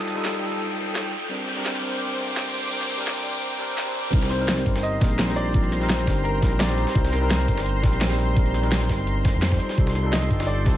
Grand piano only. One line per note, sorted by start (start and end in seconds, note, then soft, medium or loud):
4.30 4.85 C5 loud
4.83 5.38 D#5 loud
5.36 5.69 D5 loud
5.89 6.26 C5 medium
6.24 6.61 A#4 medium
6.59 6.96 D5 loud
6.94 7.13 C5 medium
7.12 7.45 A#4 medium
9.41 9.57 C5 medium
9.58 10.14 C5 medium
10.12 10.49 D#5 medium
10.47 10.77 D5 medium